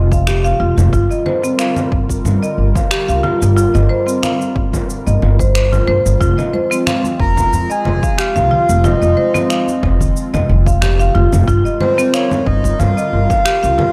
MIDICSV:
0, 0, Header, 1, 6, 480
1, 0, Start_track
1, 0, Tempo, 659341
1, 678, Time_signature, 4, 2, 24, 8
1, 10137, End_track
2, 0, Start_track
2, 0, Title_t, "Soft synth lead"
2, 0, Program_c, 0, 80
2, 5241, Note_on_c, 0, 82, 110
2, 5615, Note_on_c, 0, 80, 108
2, 5625, Note_off_c, 0, 82, 0
2, 5968, Note_on_c, 0, 77, 100
2, 5979, Note_off_c, 0, 80, 0
2, 6447, Note_on_c, 0, 75, 89
2, 6458, Note_off_c, 0, 77, 0
2, 7403, Note_off_c, 0, 75, 0
2, 8595, Note_on_c, 0, 72, 91
2, 8836, Note_on_c, 0, 73, 94
2, 8847, Note_off_c, 0, 72, 0
2, 9074, Note_on_c, 0, 75, 99
2, 9085, Note_off_c, 0, 73, 0
2, 9313, Note_on_c, 0, 77, 112
2, 9323, Note_off_c, 0, 75, 0
2, 10137, Note_off_c, 0, 77, 0
2, 10137, End_track
3, 0, Start_track
3, 0, Title_t, "Marimba"
3, 0, Program_c, 1, 12
3, 84, Note_on_c, 1, 77, 71
3, 186, Note_off_c, 1, 77, 0
3, 196, Note_on_c, 1, 67, 100
3, 313, Note_off_c, 1, 67, 0
3, 324, Note_on_c, 1, 77, 96
3, 426, Note_off_c, 1, 77, 0
3, 436, Note_on_c, 1, 65, 77
3, 666, Note_off_c, 1, 65, 0
3, 676, Note_on_c, 1, 65, 94
3, 799, Note_off_c, 1, 65, 0
3, 805, Note_on_c, 1, 75, 71
3, 869, Note_off_c, 1, 75, 0
3, 916, Note_on_c, 1, 72, 72
3, 1033, Note_off_c, 1, 72, 0
3, 1045, Note_on_c, 1, 60, 88
3, 1109, Note_off_c, 1, 60, 0
3, 1157, Note_on_c, 1, 77, 79
3, 1231, Note_off_c, 1, 77, 0
3, 1766, Note_on_c, 1, 75, 65
3, 1830, Note_off_c, 1, 75, 0
3, 2007, Note_on_c, 1, 77, 68
3, 2107, Note_off_c, 1, 77, 0
3, 2117, Note_on_c, 1, 67, 97
3, 2233, Note_off_c, 1, 67, 0
3, 2246, Note_on_c, 1, 77, 88
3, 2346, Note_off_c, 1, 77, 0
3, 2354, Note_on_c, 1, 65, 79
3, 2585, Note_off_c, 1, 65, 0
3, 2596, Note_on_c, 1, 65, 91
3, 2719, Note_off_c, 1, 65, 0
3, 2723, Note_on_c, 1, 75, 69
3, 2789, Note_off_c, 1, 75, 0
3, 2835, Note_on_c, 1, 72, 69
3, 2952, Note_off_c, 1, 72, 0
3, 2960, Note_on_c, 1, 60, 89
3, 3027, Note_off_c, 1, 60, 0
3, 3077, Note_on_c, 1, 77, 75
3, 3151, Note_off_c, 1, 77, 0
3, 3688, Note_on_c, 1, 75, 67
3, 3751, Note_off_c, 1, 75, 0
3, 3927, Note_on_c, 1, 72, 72
3, 4027, Note_off_c, 1, 72, 0
3, 4039, Note_on_c, 1, 72, 74
3, 4154, Note_off_c, 1, 72, 0
3, 4167, Note_on_c, 1, 65, 68
3, 4267, Note_off_c, 1, 65, 0
3, 4278, Note_on_c, 1, 72, 94
3, 4400, Note_off_c, 1, 72, 0
3, 4518, Note_on_c, 1, 65, 94
3, 4640, Note_off_c, 1, 65, 0
3, 4645, Note_on_c, 1, 75, 69
3, 4709, Note_off_c, 1, 75, 0
3, 4756, Note_on_c, 1, 72, 69
3, 4873, Note_off_c, 1, 72, 0
3, 4885, Note_on_c, 1, 60, 93
3, 4950, Note_off_c, 1, 60, 0
3, 4997, Note_on_c, 1, 77, 76
3, 5071, Note_off_c, 1, 77, 0
3, 5603, Note_on_c, 1, 75, 67
3, 5669, Note_off_c, 1, 75, 0
3, 5845, Note_on_c, 1, 77, 73
3, 5946, Note_off_c, 1, 77, 0
3, 5955, Note_on_c, 1, 67, 95
3, 6072, Note_off_c, 1, 67, 0
3, 6084, Note_on_c, 1, 77, 96
3, 6186, Note_off_c, 1, 77, 0
3, 6196, Note_on_c, 1, 65, 75
3, 6426, Note_off_c, 1, 65, 0
3, 6438, Note_on_c, 1, 65, 92
3, 6560, Note_off_c, 1, 65, 0
3, 6564, Note_on_c, 1, 75, 71
3, 6629, Note_off_c, 1, 75, 0
3, 6675, Note_on_c, 1, 72, 74
3, 6792, Note_off_c, 1, 72, 0
3, 6802, Note_on_c, 1, 60, 89
3, 6868, Note_off_c, 1, 60, 0
3, 6915, Note_on_c, 1, 77, 82
3, 6990, Note_off_c, 1, 77, 0
3, 7525, Note_on_c, 1, 75, 72
3, 7590, Note_off_c, 1, 75, 0
3, 7763, Note_on_c, 1, 77, 75
3, 7865, Note_off_c, 1, 77, 0
3, 7874, Note_on_c, 1, 67, 94
3, 7992, Note_off_c, 1, 67, 0
3, 8004, Note_on_c, 1, 77, 95
3, 8106, Note_off_c, 1, 77, 0
3, 8115, Note_on_c, 1, 65, 80
3, 8345, Note_off_c, 1, 65, 0
3, 8355, Note_on_c, 1, 65, 100
3, 8478, Note_off_c, 1, 65, 0
3, 8483, Note_on_c, 1, 75, 69
3, 8548, Note_off_c, 1, 75, 0
3, 8597, Note_on_c, 1, 72, 75
3, 8713, Note_off_c, 1, 72, 0
3, 8722, Note_on_c, 1, 60, 97
3, 8788, Note_off_c, 1, 60, 0
3, 8838, Note_on_c, 1, 77, 76
3, 8911, Note_off_c, 1, 77, 0
3, 9443, Note_on_c, 1, 75, 72
3, 9509, Note_off_c, 1, 75, 0
3, 9682, Note_on_c, 1, 77, 79
3, 9785, Note_off_c, 1, 77, 0
3, 9794, Note_on_c, 1, 67, 96
3, 9911, Note_off_c, 1, 67, 0
3, 9920, Note_on_c, 1, 77, 93
3, 10024, Note_off_c, 1, 77, 0
3, 10033, Note_on_c, 1, 65, 79
3, 10137, Note_off_c, 1, 65, 0
3, 10137, End_track
4, 0, Start_track
4, 0, Title_t, "Analog synth pad"
4, 0, Program_c, 2, 89
4, 0, Note_on_c, 2, 53, 73
4, 0, Note_on_c, 2, 56, 78
4, 0, Note_on_c, 2, 60, 69
4, 0, Note_on_c, 2, 65, 66
4, 647, Note_off_c, 2, 60, 0
4, 648, Note_off_c, 2, 53, 0
4, 649, Note_off_c, 2, 56, 0
4, 658, Note_off_c, 2, 65, 0
4, 677, Note_on_c, 2, 65, 62
4, 678, Note_on_c, 2, 50, 66
4, 678, Note_on_c, 2, 55, 75
4, 680, Note_on_c, 2, 70, 79
4, 4489, Note_off_c, 2, 50, 0
4, 4489, Note_off_c, 2, 55, 0
4, 4490, Note_off_c, 2, 70, 0
4, 4517, Note_on_c, 2, 56, 76
4, 4518, Note_on_c, 2, 53, 71
4, 4518, Note_on_c, 2, 60, 62
4, 8329, Note_off_c, 2, 53, 0
4, 8329, Note_off_c, 2, 56, 0
4, 8329, Note_off_c, 2, 60, 0
4, 8353, Note_on_c, 2, 50, 63
4, 8354, Note_on_c, 2, 70, 80
4, 8356, Note_on_c, 2, 55, 76
4, 10137, Note_off_c, 2, 50, 0
4, 10137, Note_off_c, 2, 55, 0
4, 10137, Note_off_c, 2, 65, 0
4, 10137, Note_off_c, 2, 70, 0
4, 10137, End_track
5, 0, Start_track
5, 0, Title_t, "Upright bass"
5, 0, Program_c, 3, 32
5, 0, Note_on_c, 3, 29, 80
5, 389, Note_off_c, 3, 29, 0
5, 436, Note_on_c, 3, 29, 88
5, 530, Note_off_c, 3, 29, 0
5, 564, Note_on_c, 3, 29, 95
5, 646, Note_off_c, 3, 29, 0
5, 678, Note_on_c, 3, 31, 93
5, 771, Note_off_c, 3, 31, 0
5, 1398, Note_on_c, 3, 31, 78
5, 1576, Note_off_c, 3, 31, 0
5, 1636, Note_on_c, 3, 43, 83
5, 1730, Note_off_c, 3, 43, 0
5, 1877, Note_on_c, 3, 31, 74
5, 1970, Note_off_c, 3, 31, 0
5, 2247, Note_on_c, 3, 37, 77
5, 2327, Note_off_c, 3, 37, 0
5, 2490, Note_on_c, 3, 31, 98
5, 2657, Note_off_c, 3, 31, 0
5, 2728, Note_on_c, 3, 31, 90
5, 2808, Note_off_c, 3, 31, 0
5, 3319, Note_on_c, 3, 31, 75
5, 3497, Note_off_c, 3, 31, 0
5, 3692, Note_on_c, 3, 31, 85
5, 3770, Note_off_c, 3, 31, 0
5, 3804, Note_on_c, 3, 31, 84
5, 4231, Note_off_c, 3, 31, 0
5, 4281, Note_on_c, 3, 31, 89
5, 4372, Note_off_c, 3, 31, 0
5, 4410, Note_on_c, 3, 31, 89
5, 4489, Note_off_c, 3, 31, 0
5, 4519, Note_on_c, 3, 29, 89
5, 4611, Note_off_c, 3, 29, 0
5, 5239, Note_on_c, 3, 29, 80
5, 5417, Note_off_c, 3, 29, 0
5, 5480, Note_on_c, 3, 41, 82
5, 5572, Note_off_c, 3, 41, 0
5, 5720, Note_on_c, 3, 29, 73
5, 5812, Note_off_c, 3, 29, 0
5, 6087, Note_on_c, 3, 36, 71
5, 6168, Note_off_c, 3, 36, 0
5, 6328, Note_on_c, 3, 29, 95
5, 6496, Note_off_c, 3, 29, 0
5, 6569, Note_on_c, 3, 29, 96
5, 6648, Note_off_c, 3, 29, 0
5, 7157, Note_on_c, 3, 29, 79
5, 7335, Note_off_c, 3, 29, 0
5, 7528, Note_on_c, 3, 29, 86
5, 7608, Note_off_c, 3, 29, 0
5, 7639, Note_on_c, 3, 29, 89
5, 8069, Note_off_c, 3, 29, 0
5, 8119, Note_on_c, 3, 29, 95
5, 8211, Note_off_c, 3, 29, 0
5, 8247, Note_on_c, 3, 29, 91
5, 8328, Note_off_c, 3, 29, 0
5, 8357, Note_on_c, 3, 31, 93
5, 8450, Note_off_c, 3, 31, 0
5, 9076, Note_on_c, 3, 31, 80
5, 9255, Note_off_c, 3, 31, 0
5, 9321, Note_on_c, 3, 43, 85
5, 9412, Note_off_c, 3, 43, 0
5, 9558, Note_on_c, 3, 31, 78
5, 9651, Note_off_c, 3, 31, 0
5, 9926, Note_on_c, 3, 37, 76
5, 10007, Note_off_c, 3, 37, 0
5, 10137, End_track
6, 0, Start_track
6, 0, Title_t, "Drums"
6, 85, Note_on_c, 9, 36, 105
6, 91, Note_on_c, 9, 82, 63
6, 158, Note_off_c, 9, 36, 0
6, 164, Note_off_c, 9, 82, 0
6, 197, Note_on_c, 9, 26, 101
6, 197, Note_on_c, 9, 64, 74
6, 202, Note_on_c, 9, 82, 54
6, 270, Note_off_c, 9, 26, 0
6, 270, Note_off_c, 9, 64, 0
6, 274, Note_off_c, 9, 82, 0
6, 329, Note_on_c, 9, 82, 33
6, 402, Note_off_c, 9, 82, 0
6, 566, Note_on_c, 9, 64, 76
6, 570, Note_on_c, 9, 82, 72
6, 639, Note_off_c, 9, 64, 0
6, 643, Note_off_c, 9, 82, 0
6, 677, Note_on_c, 9, 36, 109
6, 681, Note_on_c, 9, 82, 55
6, 750, Note_off_c, 9, 36, 0
6, 754, Note_off_c, 9, 82, 0
6, 811, Note_on_c, 9, 82, 33
6, 883, Note_off_c, 9, 82, 0
6, 918, Note_on_c, 9, 64, 74
6, 991, Note_off_c, 9, 64, 0
6, 1050, Note_on_c, 9, 82, 61
6, 1123, Note_off_c, 9, 82, 0
6, 1156, Note_on_c, 9, 26, 90
6, 1160, Note_on_c, 9, 82, 53
6, 1229, Note_off_c, 9, 26, 0
6, 1233, Note_off_c, 9, 82, 0
6, 1285, Note_on_c, 9, 64, 70
6, 1289, Note_on_c, 9, 82, 31
6, 1358, Note_off_c, 9, 64, 0
6, 1362, Note_off_c, 9, 82, 0
6, 1397, Note_on_c, 9, 36, 106
6, 1470, Note_off_c, 9, 36, 0
6, 1525, Note_on_c, 9, 36, 60
6, 1531, Note_on_c, 9, 82, 67
6, 1598, Note_off_c, 9, 36, 0
6, 1604, Note_off_c, 9, 82, 0
6, 1639, Note_on_c, 9, 64, 67
6, 1643, Note_on_c, 9, 82, 54
6, 1712, Note_off_c, 9, 64, 0
6, 1716, Note_off_c, 9, 82, 0
6, 1772, Note_on_c, 9, 82, 34
6, 1845, Note_off_c, 9, 82, 0
6, 2005, Note_on_c, 9, 36, 107
6, 2008, Note_on_c, 9, 64, 66
6, 2012, Note_on_c, 9, 82, 61
6, 2078, Note_off_c, 9, 36, 0
6, 2081, Note_off_c, 9, 64, 0
6, 2085, Note_off_c, 9, 82, 0
6, 2119, Note_on_c, 9, 26, 100
6, 2123, Note_on_c, 9, 82, 53
6, 2192, Note_off_c, 9, 26, 0
6, 2196, Note_off_c, 9, 82, 0
6, 2251, Note_on_c, 9, 82, 33
6, 2324, Note_off_c, 9, 82, 0
6, 2359, Note_on_c, 9, 64, 71
6, 2431, Note_off_c, 9, 64, 0
6, 2492, Note_on_c, 9, 82, 68
6, 2565, Note_off_c, 9, 82, 0
6, 2605, Note_on_c, 9, 82, 53
6, 2678, Note_off_c, 9, 82, 0
6, 2730, Note_on_c, 9, 64, 70
6, 2734, Note_on_c, 9, 82, 35
6, 2802, Note_off_c, 9, 64, 0
6, 2806, Note_off_c, 9, 82, 0
6, 2973, Note_on_c, 9, 82, 65
6, 3046, Note_off_c, 9, 82, 0
6, 3081, Note_on_c, 9, 26, 93
6, 3081, Note_on_c, 9, 64, 65
6, 3085, Note_on_c, 9, 82, 56
6, 3154, Note_off_c, 9, 26, 0
6, 3154, Note_off_c, 9, 64, 0
6, 3158, Note_off_c, 9, 82, 0
6, 3214, Note_on_c, 9, 82, 32
6, 3287, Note_off_c, 9, 82, 0
6, 3318, Note_on_c, 9, 36, 106
6, 3391, Note_off_c, 9, 36, 0
6, 3446, Note_on_c, 9, 36, 61
6, 3448, Note_on_c, 9, 64, 77
6, 3453, Note_on_c, 9, 82, 68
6, 3519, Note_off_c, 9, 36, 0
6, 3521, Note_off_c, 9, 64, 0
6, 3525, Note_off_c, 9, 82, 0
6, 3567, Note_on_c, 9, 82, 54
6, 3639, Note_off_c, 9, 82, 0
6, 3694, Note_on_c, 9, 82, 31
6, 3767, Note_off_c, 9, 82, 0
6, 3803, Note_on_c, 9, 64, 71
6, 3875, Note_off_c, 9, 64, 0
6, 3927, Note_on_c, 9, 36, 104
6, 3934, Note_on_c, 9, 82, 64
6, 4000, Note_off_c, 9, 36, 0
6, 4006, Note_off_c, 9, 82, 0
6, 4042, Note_on_c, 9, 26, 93
6, 4046, Note_on_c, 9, 82, 57
6, 4115, Note_off_c, 9, 26, 0
6, 4119, Note_off_c, 9, 82, 0
6, 4170, Note_on_c, 9, 64, 68
6, 4174, Note_on_c, 9, 82, 32
6, 4243, Note_off_c, 9, 64, 0
6, 4247, Note_off_c, 9, 82, 0
6, 4413, Note_on_c, 9, 82, 70
6, 4486, Note_off_c, 9, 82, 0
6, 4519, Note_on_c, 9, 36, 107
6, 4525, Note_on_c, 9, 82, 54
6, 4591, Note_off_c, 9, 36, 0
6, 4598, Note_off_c, 9, 82, 0
6, 4650, Note_on_c, 9, 64, 78
6, 4654, Note_on_c, 9, 82, 32
6, 4722, Note_off_c, 9, 64, 0
6, 4726, Note_off_c, 9, 82, 0
6, 4759, Note_on_c, 9, 63, 78
6, 4768, Note_on_c, 9, 62, 29
6, 4832, Note_off_c, 9, 63, 0
6, 4840, Note_off_c, 9, 62, 0
6, 4893, Note_on_c, 9, 82, 62
6, 4966, Note_off_c, 9, 82, 0
6, 5001, Note_on_c, 9, 26, 85
6, 5001, Note_on_c, 9, 64, 74
6, 5005, Note_on_c, 9, 82, 52
6, 5074, Note_off_c, 9, 26, 0
6, 5074, Note_off_c, 9, 64, 0
6, 5078, Note_off_c, 9, 82, 0
6, 5127, Note_on_c, 9, 63, 62
6, 5133, Note_on_c, 9, 82, 30
6, 5200, Note_off_c, 9, 63, 0
6, 5206, Note_off_c, 9, 82, 0
6, 5238, Note_on_c, 9, 36, 105
6, 5311, Note_off_c, 9, 36, 0
6, 5366, Note_on_c, 9, 36, 58
6, 5368, Note_on_c, 9, 63, 31
6, 5368, Note_on_c, 9, 64, 77
6, 5372, Note_on_c, 9, 82, 67
6, 5439, Note_off_c, 9, 36, 0
6, 5440, Note_off_c, 9, 64, 0
6, 5441, Note_off_c, 9, 63, 0
6, 5444, Note_off_c, 9, 82, 0
6, 5484, Note_on_c, 9, 82, 51
6, 5556, Note_off_c, 9, 82, 0
6, 5611, Note_on_c, 9, 82, 31
6, 5683, Note_off_c, 9, 82, 0
6, 5717, Note_on_c, 9, 64, 75
6, 5790, Note_off_c, 9, 64, 0
6, 5846, Note_on_c, 9, 36, 107
6, 5849, Note_on_c, 9, 82, 58
6, 5918, Note_off_c, 9, 36, 0
6, 5922, Note_off_c, 9, 82, 0
6, 5958, Note_on_c, 9, 26, 89
6, 5963, Note_on_c, 9, 82, 52
6, 6031, Note_off_c, 9, 26, 0
6, 6035, Note_off_c, 9, 82, 0
6, 6085, Note_on_c, 9, 64, 77
6, 6086, Note_on_c, 9, 62, 28
6, 6089, Note_on_c, 9, 82, 31
6, 6158, Note_off_c, 9, 64, 0
6, 6159, Note_off_c, 9, 62, 0
6, 6162, Note_off_c, 9, 82, 0
6, 6195, Note_on_c, 9, 64, 77
6, 6268, Note_off_c, 9, 64, 0
6, 6329, Note_on_c, 9, 82, 68
6, 6402, Note_off_c, 9, 82, 0
6, 6436, Note_on_c, 9, 64, 78
6, 6440, Note_on_c, 9, 82, 47
6, 6509, Note_off_c, 9, 64, 0
6, 6513, Note_off_c, 9, 82, 0
6, 6569, Note_on_c, 9, 82, 33
6, 6642, Note_off_c, 9, 82, 0
6, 6677, Note_on_c, 9, 63, 68
6, 6750, Note_off_c, 9, 63, 0
6, 6805, Note_on_c, 9, 64, 82
6, 6809, Note_on_c, 9, 82, 61
6, 6878, Note_off_c, 9, 64, 0
6, 6882, Note_off_c, 9, 82, 0
6, 6918, Note_on_c, 9, 26, 88
6, 6922, Note_on_c, 9, 82, 49
6, 6991, Note_off_c, 9, 26, 0
6, 6995, Note_off_c, 9, 82, 0
6, 7047, Note_on_c, 9, 63, 58
6, 7050, Note_on_c, 9, 82, 31
6, 7120, Note_off_c, 9, 63, 0
6, 7123, Note_off_c, 9, 82, 0
6, 7157, Note_on_c, 9, 36, 107
6, 7157, Note_on_c, 9, 64, 76
6, 7230, Note_off_c, 9, 36, 0
6, 7230, Note_off_c, 9, 64, 0
6, 7283, Note_on_c, 9, 64, 83
6, 7285, Note_on_c, 9, 36, 57
6, 7290, Note_on_c, 9, 82, 67
6, 7356, Note_off_c, 9, 64, 0
6, 7358, Note_off_c, 9, 36, 0
6, 7363, Note_off_c, 9, 82, 0
6, 7401, Note_on_c, 9, 82, 48
6, 7474, Note_off_c, 9, 82, 0
6, 7526, Note_on_c, 9, 64, 81
6, 7531, Note_on_c, 9, 62, 55
6, 7531, Note_on_c, 9, 82, 32
6, 7599, Note_off_c, 9, 64, 0
6, 7603, Note_off_c, 9, 82, 0
6, 7604, Note_off_c, 9, 62, 0
6, 7640, Note_on_c, 9, 64, 75
6, 7712, Note_off_c, 9, 64, 0
6, 7764, Note_on_c, 9, 36, 96
6, 7771, Note_on_c, 9, 62, 48
6, 7771, Note_on_c, 9, 82, 61
6, 7772, Note_on_c, 9, 63, 59
6, 7837, Note_off_c, 9, 36, 0
6, 7844, Note_off_c, 9, 62, 0
6, 7844, Note_off_c, 9, 82, 0
6, 7845, Note_off_c, 9, 63, 0
6, 7877, Note_on_c, 9, 26, 94
6, 7877, Note_on_c, 9, 64, 78
6, 7881, Note_on_c, 9, 82, 52
6, 7950, Note_off_c, 9, 26, 0
6, 7950, Note_off_c, 9, 64, 0
6, 7954, Note_off_c, 9, 82, 0
6, 8009, Note_on_c, 9, 82, 31
6, 8082, Note_off_c, 9, 82, 0
6, 8117, Note_on_c, 9, 62, 51
6, 8118, Note_on_c, 9, 64, 72
6, 8190, Note_off_c, 9, 62, 0
6, 8191, Note_off_c, 9, 64, 0
6, 8245, Note_on_c, 9, 64, 81
6, 8246, Note_on_c, 9, 62, 48
6, 8249, Note_on_c, 9, 82, 65
6, 8318, Note_off_c, 9, 64, 0
6, 8319, Note_off_c, 9, 62, 0
6, 8322, Note_off_c, 9, 82, 0
6, 8355, Note_on_c, 9, 36, 113
6, 8360, Note_on_c, 9, 82, 48
6, 8428, Note_off_c, 9, 36, 0
6, 8433, Note_off_c, 9, 82, 0
6, 8489, Note_on_c, 9, 82, 29
6, 8562, Note_off_c, 9, 82, 0
6, 8595, Note_on_c, 9, 64, 81
6, 8597, Note_on_c, 9, 62, 34
6, 8604, Note_on_c, 9, 63, 66
6, 8667, Note_off_c, 9, 64, 0
6, 8670, Note_off_c, 9, 62, 0
6, 8677, Note_off_c, 9, 63, 0
6, 8728, Note_on_c, 9, 82, 58
6, 8801, Note_off_c, 9, 82, 0
6, 8836, Note_on_c, 9, 26, 92
6, 8840, Note_on_c, 9, 82, 46
6, 8909, Note_off_c, 9, 26, 0
6, 8913, Note_off_c, 9, 82, 0
6, 8961, Note_on_c, 9, 63, 57
6, 8965, Note_on_c, 9, 64, 80
6, 8969, Note_on_c, 9, 82, 30
6, 9033, Note_off_c, 9, 63, 0
6, 9038, Note_off_c, 9, 64, 0
6, 9042, Note_off_c, 9, 82, 0
6, 9075, Note_on_c, 9, 36, 101
6, 9148, Note_off_c, 9, 36, 0
6, 9203, Note_on_c, 9, 36, 58
6, 9204, Note_on_c, 9, 63, 37
6, 9210, Note_on_c, 9, 82, 66
6, 9276, Note_off_c, 9, 36, 0
6, 9277, Note_off_c, 9, 63, 0
6, 9283, Note_off_c, 9, 82, 0
6, 9317, Note_on_c, 9, 64, 77
6, 9321, Note_on_c, 9, 82, 49
6, 9389, Note_off_c, 9, 64, 0
6, 9393, Note_off_c, 9, 82, 0
6, 9451, Note_on_c, 9, 82, 30
6, 9523, Note_off_c, 9, 82, 0
6, 9683, Note_on_c, 9, 36, 101
6, 9684, Note_on_c, 9, 64, 73
6, 9688, Note_on_c, 9, 82, 55
6, 9756, Note_off_c, 9, 36, 0
6, 9757, Note_off_c, 9, 64, 0
6, 9761, Note_off_c, 9, 82, 0
6, 9796, Note_on_c, 9, 26, 95
6, 9800, Note_on_c, 9, 82, 52
6, 9869, Note_off_c, 9, 26, 0
6, 9873, Note_off_c, 9, 82, 0
6, 9924, Note_on_c, 9, 62, 35
6, 9929, Note_on_c, 9, 82, 31
6, 9996, Note_off_c, 9, 62, 0
6, 10002, Note_off_c, 9, 82, 0
6, 10035, Note_on_c, 9, 64, 76
6, 10037, Note_off_c, 9, 64, 0
6, 10037, Note_on_c, 9, 64, 76
6, 10110, Note_off_c, 9, 64, 0
6, 10137, End_track
0, 0, End_of_file